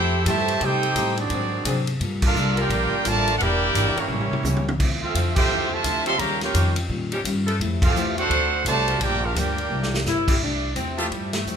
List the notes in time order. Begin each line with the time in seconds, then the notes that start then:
Already playing: F2 F3 A3 C4 E4 G4 A4 C5 G5
0.24 G2 C3 E3 F3 A3 E4 G4 C5 E5 A5, kick, hi-hat pedal, ride
0.48 ride
0.60 A2 C3 G3 C4 D#4 G4 A4 C5 G5, kick, ride
0.64 D#4
0.83 ride
0.95 A2 G3 C4 D#4, kick, hi-hat pedal, ride
1.17 D#3 F#3 C4 D4 F#4 G#4 D5, ride
1.30 G#2 F#3 C4, kick, ride
1.34 D4
1.65 G#2 C3 F#3 C4 D4 G#4, kick, hi-hat pedal, ride
1.87 ride
2.00 G2 G3 A#3 F4 A4, kick, ride
2.22 A#3 D4 F4 A4 A#4 F5, kick, crash
2.34 C2 G3 A#3 F4 A4, hi-hat pedal
2.56 G3 A#3 D4 F4 G4 A#4, ride
2.60 F4 A#4 D5 G5
2.70 A#1 G3 A#3 F4 A4, kick, ride
2.92 muted upright bass stroke
3.05 A1 D3 F3 G3 A3 A#3 F4 A4 A#4 D5 A5, kick, hi-hat pedal, ride
3.28 ride
3.37 E1 E3 G3 A#3 F#5, kick, ride
3.41 A#3 D4 E4 G4 A#4 D5 G5
3.75 G1 E3 A#3 D4 G4, kick, hi-hat pedal, ride
3.96 E3 G3 A#3 C#4 E4 G4 A#4 C#5, muted upright bass stroke, ride
4.08 A1 A2 G3, mid tom
4.12 A#3 C#4
4.21 mid tom
4.31 muted upright bass stroke, mid tom
4.43 C#2 A2 G3 A#3 C#4, hi-hat pedal, high tom
4.57 high tom
4.68 high tom
4.79 D2 D3 F3 C4 E4, kick, crash
5.01 A3 C4 F4 A4 E5 F5
5.14 F2 D3 F3 C4 E4, kick, hi-hat pedal, ride
5.36 A3 C4 F4 G4 C5 E5 G5, kick, crash
5.48 E2 D3 F3 C4
5.53 E4
5.70 C3 F3 A3 F4 C5 E5 A5
5.84 D2 D3 F3 C4 E4, kick, hi-hat pedal, ride
6.03 F3 A3 C4 C#4 D#4 G4 A4 E5 F5 C6, ride
6.18 D#2 C#3 D#3 G3 A#3 C#4 G4 C#5 F5 A#5, kick, ride
6.22 F4
6.41 A#3 C#4 F4 G4 A#4 C#5 G5, snare, ride
6.54 F2 D#3 G3 C#4 F4, kick, hi-hat pedal, ride
6.76 ride
6.89 A#2 D#3 G3 C#4 F4, kick
7.12 F3 C#4 D#4 G4, ride
7.24 G2 D#3 G3 C#4 F4, kick, hi-hat pedal, ride
7.47 F3 A3 E4 A4, ride
7.59 F2 F3 A3 E4 G4, kick, ride
7.82 A3 C4 F4 G4 A4 F5, kick, crash
7.93 E2 F3 A3 E4, hi-hat pedal
7.97 G4
8.17 A3 C4 D4 F#4 A4 C5 F#5, ride
8.30 D2 D3 A3 C4 F#4, kick, ride
8.65 C2 C3 D3 F#3 A3 C4 F#4 C5 D5 A5, kick, hi-hat pedal, ride
8.88 F3 A#3 D4 G4, ride
9.00 A#1 G2 F3 A#3 D4 F4 G4 A#4 D5 G5, kick, ride
9.22 A#3 D4 F4 G4 A#4 F5
9.35 D2 G2 F3 A#3 D4 F4 G4 A#4 D5 G5, kick, hi-hat pedal, ride
9.58 ride
9.69 C2 C3 G3 A#3 E4
9.83 snare
9.94 snare
10.05 G1 C3 G3 A#3 E4, snare, hi-hat pedal
10.28 F3 A3 E4 G4, kick, crash
10.40 C2 F3 A3 D4 E4 G4, kick
10.75 E2 F3 A3 C4 E4 G4, kick, hi-hat pedal, ride
10.97 F3 A3 C4 E4 F4 G4 A4 E5, ride
11.11 G2 F3 G3 A3 E4 G4, kick, ride
11.33 A3, snare, ride
11.46 F2 F3 A3 E4 G4, hi-hat pedal